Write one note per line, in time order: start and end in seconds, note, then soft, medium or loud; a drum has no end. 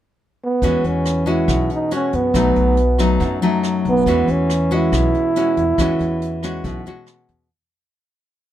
0.44 0.88 B3 medium
0.62 0.82 E2 medium
0.62 1.46 E3 soft
0.62 1.24 G#3 soft
0.62 1.24 C#4 medium
0.62 1.24 F#4 medium
0.62 kick soft
0.62 closed hi-hat soft
0.84 1.44 E2 medium
0.84 1.31 C#4 medium
0.84 closed hi-hat soft
1.05 cross-stick medium
1.05 closed hi-hat soft
1.26 1.87 G#3 medium
1.26 1.88 C#4 medium
1.26 1.71 E4 medium
1.26 1.88 F#4 medium
1.26 closed hi-hat soft
1.48 1.68 B1 medium
1.48 2.32 B2 soft
1.48 kick medium
1.48 cross-stick medium
1.48 closed hi-hat soft
1.70 1.91 D#4 medium
1.70 closed hi-hat soft
1.91 2.31 G#3 medium
1.91 2.31 C#4 medium
1.91 2.17 C#4 medium
1.91 2.31 F#4 soft
1.91 closed hi-hat soft
2.13 2.33 F#2 medium
2.13 3.43 B3 medium
2.13 closed hi-hat soft
2.34 2.54 B1 medium
2.34 3.18 B2 soft
2.34 2.77 F#3 medium
2.34 2.77 A3 medium
2.34 2.78 D#4 medium
2.34 kick medium
2.34 cross-stick medium
2.34 closed hi-hat soft
2.56 3.17 B1 medium
2.56 closed hi-hat soft
2.77 closed hi-hat soft
2.98 3.39 F#3 medium
2.98 3.39 A3 medium
2.98 3.39 D#4 medium
2.98 cross-stick soft
2.98 closed hi-hat soft
3.20 3.40 F#2 medium
3.20 4.04 F#2 soft
3.20 kick medium
3.20 closed hi-hat soft
3.42 4.03 F#3 medium
3.42 4.03 A3 medium
3.42 4.04 D#4 medium
3.42 closed hi-hat soft
3.63 cross-stick soft
3.63 closed hi-hat soft
3.85 4.05 B1 medium
3.85 4.33 B3 medium
3.85 closed hi-hat soft
4.06 4.26 E2 medium
4.06 4.91 E3 medium
4.06 4.49 G#3 soft
4.06 4.50 C#4 soft
4.06 4.50 F#4 medium
4.06 kick soft
4.06 closed hi-hat soft
4.27 4.88 E2 medium
4.27 closed hi-hat soft
4.32 4.76 C#4 medium
4.50 cross-stick medium
4.50 closed hi-hat soft
4.71 5.32 G#3 medium
4.71 5.32 C#4 medium
4.71 7.09 E4 medium
4.71 5.32 F#4 medium
4.71 closed hi-hat soft
4.92 5.12 B1 medium
4.92 5.76 B2 soft
4.92 kick soft
4.92 cross-stick medium
4.92 closed hi-hat soft
5.14 closed hi-hat soft
5.36 5.64 G#3 medium
5.36 5.64 C#4 medium
5.36 5.64 F#4 medium
5.36 closed hi-hat soft
5.57 5.77 E2 medium
5.57 closed hi-hat soft
5.78 5.98 E2 medium
5.78 6.62 E3 soft
5.78 6.40 G#3 medium
5.78 6.40 C#4 soft
5.78 6.40 F#4 medium
5.78 kick medium
5.78 cross-stick medium
5.78 closed hi-hat soft
5.99 6.60 E2 medium
5.99 closed hi-hat soft
6.22 closed hi-hat soft
6.43 6.83 G#3 medium
6.43 6.83 C#4 soft
6.43 6.83 F#4 medium
6.43 cross-stick medium
6.43 closed hi-hat soft
6.64 6.84 B1 medium
6.64 7.48 B2 soft
6.64 kick medium
6.64 closed hi-hat soft
6.86 7.47 G#3 medium
6.86 7.47 C#4 medium
6.86 7.47 F#4 medium
6.86 closed hi-hat soft
7.06 cross-stick medium
7.06 closed hi-hat soft
7.28 7.49 E2 medium
7.28 closed hi-hat soft